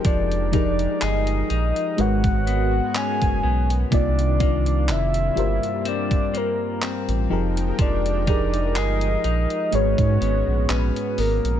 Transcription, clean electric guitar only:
X:1
M:4/4
L:1/8
Q:"Swing 16ths" 1/4=62
K:Flyd
V:1 name="Clean electric guitar"
F, _E _A E ^G,, B, ^C B, | C, _B,2 G,, C B, C F, | F, _E _A E ^G,, B, ^C B, |]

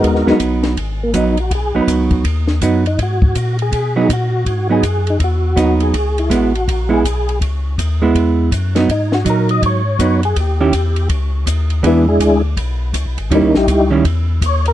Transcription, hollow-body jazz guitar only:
X:1
M:4/4
L:1/8
Q:"Swing" 1/4=163
K:G#m
V:1 name="Hollow-body jazz guitar"
z [F,B,D]3 z2 [F,B,D] z | z [F,B,D]3 z2 [F,B,D] z | z4 z [F,B,D] z2 | z [F,B,D] z4 [F,B,D]2 |
z2 [G,B,E] z2 [G,B,E] z2 | z3 [G,B,E]3 z [F,B,D] | z2 [F,D]3 z [F,B,D] z | z [D,CE=G] z6 |
[E,B,=DG] z6 z | [D,=G,CE] z2 [D,G,CE] z4 |]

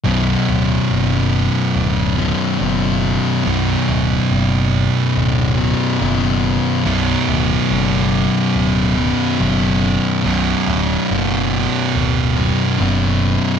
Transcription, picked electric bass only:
X:1
M:4/4
L:1/8
Q:1/4=71
K:Bm
V:1 name="Picked electric bass" clef=bass
B,,,, D,,, F,,,2 D,,,2 F,,,2 | B,,,, D,,, F,,,2 D,,,2 F,,,2 | B,,,, D,,, F,,,2 D,,,2 F,,,2 | B,,,, D,,, F,,,2 D,,,2 F,,,2 |]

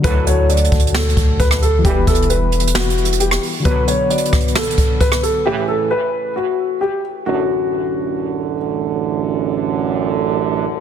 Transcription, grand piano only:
X:1
M:4/4
L:1/8
Q:1/4=133
K:D
V:1 name="Grand piano"
B c d2 A2 B A | G A B2 F2 G z | B c d2 A2 B A | G A B2 F2 G z |
F6 z2 | z8 |]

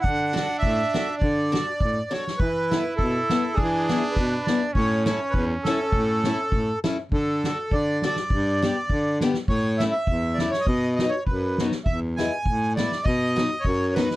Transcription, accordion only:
X:1
M:2/4
L:1/16
Q:"Swing" 1/4=102
K:A
V:1 name="Accordion"
f4 e4 | d6 c2 | B4 A4 | G4 B2 d2 |
c2 c2 B2 A2- | A6 z2 | [K:D] A4 d2 d2- | d6 z2 |
c2 e e3 d c | ^d2 d c B3 z | e2 ^g4 d2 | ^d4 c2 B2 |]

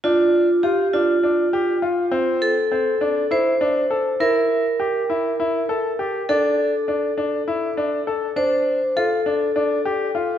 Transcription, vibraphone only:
X:1
M:7/8
L:1/8
Q:1/4=101
K:Dm
V:1 name="Vibraphone"
F2 G F4- | F A3 c3 | B6- B | A6 z |
c2 A4- A |]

